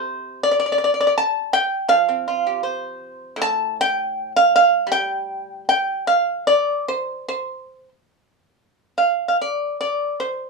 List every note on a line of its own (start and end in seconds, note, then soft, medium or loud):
0.00 1.88 C3 medium
0.00 0.39 C5 medium
0.43 0.48 D5 loud
0.51 0.56 D5 medium
0.60 0.64 D5 medium
0.66 0.70 D5 medium
0.72 0.77 D5 medium
0.78 0.83 D5 medium
0.84 0.90 D5 medium
0.94 0.98 D5 medium
1.01 1.05 D5 medium
1.07 1.12 D5 medium
1.18 1.51 A5 loud
1.53 1.87 G5 loud
1.89 3.36 F3 medium
1.89 2.97 F5 loud
2.09 3.58 C4 medium
2.28 2.63 F4 medium
2.47 3.96 G4 medium
2.63 3.41 C5 medium
3.36 5.66 A2 medium
3.42 3.75 A5 loud
3.81 4.32 G5 loud
4.36 4.53 F5 loud
4.56 4.89 F5 loud
4.87 7.28 G3 medium
4.92 5.64 G5 loud
5.69 6.05 G5 loud
6.07 6.44 F5 loud
6.47 6.85 D5 loud
6.88 7.27 C5 medium
7.28 7.89 C5 medium
8.98 9.27 F5 medium
9.28 9.36 F5 medium
9.41 9.76 D5 medium
9.81 10.15 D5 medium
10.20 10.50 C5 medium